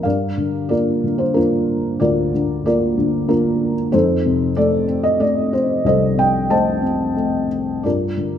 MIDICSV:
0, 0, Header, 1, 2, 480
1, 0, Start_track
1, 0, Key_signature, -2, "minor"
1, 0, Tempo, 659341
1, 33, Time_signature, 3, 2, 24, 8
1, 1473, Tempo, 641026
1, 4833, Tempo, 670391
1, 6173, End_track
2, 0, Start_track
2, 0, Title_t, "Felt piano"
2, 0, Program_c, 0, 0
2, 0, Control_c, 0, 64, 127
2, 23, Note_on_c, 0, 77, 64
2, 32, Note_on_c, 0, 43, 51
2, 36, Note_on_c, 0, 74, 46
2, 40, Note_on_c, 0, 70, 44
2, 44, Control_c, 0, 64, 0
2, 193, Control_c, 0, 64, 127
2, 273, Note_on_c, 0, 50, 40
2, 490, Note_off_c, 0, 74, 0
2, 501, Note_on_c, 0, 74, 64
2, 506, Note_off_c, 0, 70, 0
2, 514, Note_on_c, 0, 58, 45
2, 516, Note_on_c, 0, 65, 45
2, 517, Note_on_c, 0, 70, 46
2, 527, Note_off_c, 0, 77, 0
2, 746, Note_off_c, 0, 50, 0
2, 757, Note_on_c, 0, 50, 45
2, 861, Note_on_c, 0, 72, 64
2, 879, Note_off_c, 0, 74, 0
2, 966, Note_off_c, 0, 70, 0
2, 977, Note_on_c, 0, 70, 60
2, 983, Note_off_c, 0, 58, 0
2, 983, Note_off_c, 0, 65, 0
2, 992, Note_off_c, 0, 72, 0
2, 993, Note_on_c, 0, 58, 45
2, 994, Note_on_c, 0, 62, 45
2, 994, Note_on_c, 0, 65, 47
2, 1442, Note_off_c, 0, 43, 0
2, 1454, Note_on_c, 0, 74, 71
2, 1455, Note_off_c, 0, 65, 0
2, 1458, Note_off_c, 0, 70, 0
2, 1465, Note_on_c, 0, 38, 52
2, 1466, Note_on_c, 0, 65, 51
2, 1468, Note_on_c, 0, 70, 50
2, 1683, Note_off_c, 0, 62, 0
2, 1685, Note_off_c, 0, 50, 0
2, 1711, Note_on_c, 0, 50, 44
2, 1923, Note_off_c, 0, 58, 0
2, 1936, Note_off_c, 0, 74, 0
2, 1944, Note_off_c, 0, 70, 0
2, 1947, Note_on_c, 0, 74, 73
2, 1948, Note_off_c, 0, 65, 0
2, 1950, Note_on_c, 0, 58, 51
2, 1956, Note_on_c, 0, 70, 52
2, 1960, Note_on_c, 0, 65, 51
2, 2175, Note_off_c, 0, 50, 0
2, 2186, Note_on_c, 0, 50, 51
2, 2405, Note_off_c, 0, 58, 0
2, 2409, Note_off_c, 0, 70, 0
2, 2416, Note_on_c, 0, 58, 49
2, 2419, Note_off_c, 0, 65, 0
2, 2420, Note_on_c, 0, 70, 71
2, 2430, Note_on_c, 0, 65, 51
2, 2432, Note_on_c, 0, 62, 49
2, 2442, Note_off_c, 0, 74, 0
2, 2756, Note_off_c, 0, 70, 0
2, 2872, Note_off_c, 0, 38, 0
2, 2875, Note_off_c, 0, 65, 0
2, 2876, Note_off_c, 0, 62, 0
2, 2880, Note_off_c, 0, 50, 0
2, 2883, Note_off_c, 0, 58, 0
2, 2894, Note_on_c, 0, 72, 76
2, 2904, Note_on_c, 0, 63, 58
2, 2905, Note_on_c, 0, 41, 56
2, 2907, Note_on_c, 0, 69, 59
2, 2914, Control_c, 0, 64, 0
2, 3062, Control_c, 0, 64, 127
2, 3144, Note_on_c, 0, 48, 49
2, 3341, Note_off_c, 0, 72, 0
2, 3373, Note_off_c, 0, 69, 0
2, 3376, Note_on_c, 0, 74, 83
2, 3380, Note_on_c, 0, 57, 52
2, 3385, Note_on_c, 0, 69, 58
2, 3584, Note_off_c, 0, 63, 0
2, 3609, Note_on_c, 0, 60, 52
2, 3709, Note_off_c, 0, 74, 0
2, 3728, Note_on_c, 0, 75, 79
2, 3837, Note_off_c, 0, 57, 0
2, 3848, Note_on_c, 0, 57, 50
2, 3852, Note_on_c, 0, 74, 75
2, 3856, Note_off_c, 0, 75, 0
2, 4073, Note_off_c, 0, 48, 0
2, 4074, Note_off_c, 0, 69, 0
2, 4099, Note_on_c, 0, 72, 72
2, 4105, Note_off_c, 0, 74, 0
2, 4313, Note_off_c, 0, 41, 0
2, 4333, Note_on_c, 0, 36, 56
2, 4340, Note_off_c, 0, 72, 0
2, 4348, Note_on_c, 0, 75, 78
2, 4351, Note_on_c, 0, 69, 57
2, 4352, Note_on_c, 0, 72, 57
2, 4555, Note_off_c, 0, 60, 0
2, 4574, Note_on_c, 0, 48, 44
2, 4590, Note_on_c, 0, 79, 78
2, 4596, Note_off_c, 0, 75, 0
2, 4797, Note_off_c, 0, 57, 0
2, 4820, Note_off_c, 0, 72, 0
2, 4824, Note_on_c, 0, 57, 47
2, 4827, Note_on_c, 0, 81, 71
2, 4830, Note_on_c, 0, 75, 54
2, 4831, Note_on_c, 0, 72, 52
2, 4839, Note_off_c, 0, 79, 0
2, 5041, Note_off_c, 0, 69, 0
2, 5051, Note_on_c, 0, 60, 43
2, 5290, Note_off_c, 0, 57, 0
2, 5301, Note_on_c, 0, 57, 40
2, 5516, Note_off_c, 0, 48, 0
2, 5520, Note_off_c, 0, 81, 0
2, 5522, Note_off_c, 0, 72, 0
2, 5522, Note_off_c, 0, 75, 0
2, 5758, Note_off_c, 0, 36, 0
2, 5762, Note_off_c, 0, 60, 0
2, 5773, Note_off_c, 0, 57, 0
2, 5780, Note_on_c, 0, 74, 58
2, 5784, Note_on_c, 0, 43, 50
2, 5796, Note_on_c, 0, 65, 42
2, 5799, Control_c, 0, 64, 0
2, 5799, Note_on_c, 0, 70, 43
2, 5942, Control_c, 0, 64, 127
2, 6023, Note_on_c, 0, 50, 39
2, 6173, Note_off_c, 0, 43, 0
2, 6173, Note_off_c, 0, 50, 0
2, 6173, Note_off_c, 0, 65, 0
2, 6173, Note_off_c, 0, 70, 0
2, 6173, Note_off_c, 0, 74, 0
2, 6173, End_track
0, 0, End_of_file